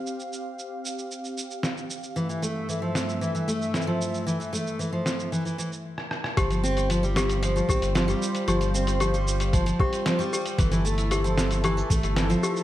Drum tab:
HH |--------------------------------|--------------------------------|--------------------------------|x-x---x-x-----x-x-----x-x-----x-|
SH |x-x-x---x---x-x-x-x-x-x-x-x-x-x-|x-x-x---x---x-x-x-x-x-x-xx--x-x-|x-x-x-x-x---x-x-x-x-x-x---------|x-x-x-x-x-x-x-x-x-x-x-x-x-x-x-x-|
SD |------------------------o-------|------------o-----------o-------|------------o-------------r-r-r-|------------o-----------o-------|
BD |--------------------------------|--------------------------------|--------------------------------|o-------------------o-----------|

HH |x-x---x-x-----x-x-x---x-x-----x-|x-x---x-x-----x-x-----x-x-------|
SH |x-x-x-x-x-x-x-x-x-x---x-x-x-x-x-|x-x-x-x-x-x-x-x-x-x-x-x-x-x-x-x-|
SD |------------------------o-------|------------o-----------o-------|
BD |----------------o---o-----------|o-------------------o-----------|